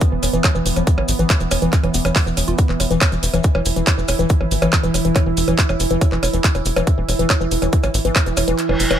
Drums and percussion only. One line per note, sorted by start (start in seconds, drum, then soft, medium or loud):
0.01 kick loud
0.01 closed hi-hat medium
0.01 maracas medium
0.23 open hi-hat loud
0.23 percussion blips soft
0.23 maracas loud
0.34 closed hi-hat medium
0.34 maracas soft
0.44 kick loud
0.44 clap loud
0.44 closed hi-hat medium
0.44 percussion blips medium
0.44 maracas medium
0.55 maracas soft
0.66 open hi-hat loud
0.66 maracas loud
0.76 closed hi-hat medium
0.76 percussion blips soft
0.76 maracas soft
0.87 kick loud
0.87 closed hi-hat medium
0.87 maracas medium
0.98 percussion blips medium
1.08 open hi-hat loud
1.08 maracas loud
1.19 closed hi-hat medium
1.19 maracas soft
1.30 kick loud
1.30 clap loud
1.30 closed hi-hat medium
1.30 percussion blips soft
1.30 maracas medium
1.40 closed hi-hat soft
1.40 maracas soft
1.51 open hi-hat loud
1.51 percussion blips medium
1.51 maracas loud
1.62 closed hi-hat soft
1.62 maracas soft
1.73 kick loud
1.73 clap soft
1.73 closed hi-hat medium
1.73 maracas medium
1.84 closed hi-hat soft
1.84 percussion blips soft
1.94 open hi-hat loud
1.94 maracas loud
2.05 closed hi-hat medium
2.05 percussion blips medium
2.05 maracas soft
2.16 kick loud
2.16 clap loud
2.16 open hi-hat medium
2.16 maracas medium
2.27 maracas soft
2.37 open hi-hat loud
2.37 percussion blips soft
2.37 maracas medium
2.47 closed hi-hat medium
2.47 maracas soft
2.58 kick loud
2.58 closed hi-hat medium
2.58 maracas soft
2.69 clap soft
2.80 open hi-hat loud
2.80 percussion blips soft
2.80 maracas medium
2.91 closed hi-hat medium
2.91 maracas soft
3.01 kick loud
3.01 clap loud
3.01 closed hi-hat medium
3.01 percussion blips medium
3.01 maracas medium
3.12 closed hi-hat soft
3.12 maracas soft
3.23 open hi-hat loud
3.23 maracas loud
3.34 closed hi-hat medium
3.34 percussion blips soft
3.34 maracas soft
3.43 kick loud
3.43 closed hi-hat medium
3.43 maracas medium
3.55 percussion blips medium
3.65 open hi-hat loud
3.65 maracas loud
3.76 closed hi-hat medium
3.76 maracas soft
3.87 kick loud
3.87 clap loud
3.87 closed hi-hat medium
3.87 percussion blips soft
3.87 maracas medium
3.98 maracas soft
4.08 open hi-hat loud
4.08 percussion blips medium
4.08 maracas medium
4.19 closed hi-hat medium
4.19 maracas soft
4.29 kick loud
4.29 closed hi-hat medium
4.29 maracas soft
4.41 percussion blips soft
4.51 open hi-hat loud
4.51 maracas medium
4.62 closed hi-hat medium
4.62 percussion blips medium
4.62 maracas soft
4.73 kick loud
4.73 clap loud
4.73 closed hi-hat medium
4.73 maracas medium
4.83 closed hi-hat soft
4.83 maracas soft
4.94 open hi-hat loud
4.94 percussion blips soft
4.94 maracas loud
5.05 closed hi-hat medium
5.05 maracas soft
5.15 kick loud
5.15 clap soft
5.15 closed hi-hat medium
5.15 percussion blips medium
5.15 maracas soft
5.37 open hi-hat loud
5.37 maracas medium
5.48 closed hi-hat medium
5.48 percussion blips soft
5.48 maracas soft
5.59 kick loud
5.59 clap loud
5.59 closed hi-hat medium
5.59 maracas soft
5.69 percussion blips medium
5.69 maracas soft
5.80 open hi-hat loud
5.80 maracas medium
5.90 closed hi-hat medium
5.90 maracas soft
6.01 kick loud
6.01 closed hi-hat medium
6.01 percussion blips soft
6.01 maracas medium
6.12 clap soft
6.23 open hi-hat loud
6.23 percussion blips medium
6.23 maracas medium
6.33 closed hi-hat medium
6.33 maracas soft
6.44 kick loud
6.44 clap loud
6.44 closed hi-hat medium
6.44 maracas medium
6.55 closed hi-hat soft
6.55 percussion blips soft
6.55 maracas soft
6.65 open hi-hat loud
6.65 maracas medium
6.76 closed hi-hat medium
6.76 percussion blips medium
6.76 maracas soft
6.87 kick loud
6.87 closed hi-hat medium
6.87 maracas soft
7.09 open hi-hat loud
7.09 percussion blips soft
7.09 maracas medium
7.19 closed hi-hat medium
7.19 maracas soft
7.30 kick loud
7.30 clap loud
7.30 closed hi-hat medium
7.30 percussion blips medium
7.30 maracas medium
7.41 maracas soft
7.51 open hi-hat loud
7.51 maracas medium
7.62 closed hi-hat medium
7.62 percussion blips soft
7.62 maracas soft
7.73 kick loud
7.73 closed hi-hat medium
7.73 maracas medium
7.83 closed hi-hat soft
7.83 percussion blips medium
7.83 maracas soft
7.94 open hi-hat loud
7.94 maracas medium
8.05 closed hi-hat medium
8.05 maracas soft
8.16 kick loud
8.16 clap loud
8.16 closed hi-hat medium
8.16 percussion blips soft
8.16 maracas soft
8.26 closed hi-hat soft
8.26 maracas soft
8.37 open hi-hat loud
8.37 percussion blips medium
8.37 maracas loud
8.48 closed hi-hat medium
8.48 maracas soft
8.58 clap soft
8.58 closed hi-hat medium
8.58 maracas soft
8.69 percussion blips soft
8.80 open hi-hat loud
8.80 maracas medium
8.91 closed hi-hat medium
8.91 percussion blips medium
8.91 maracas soft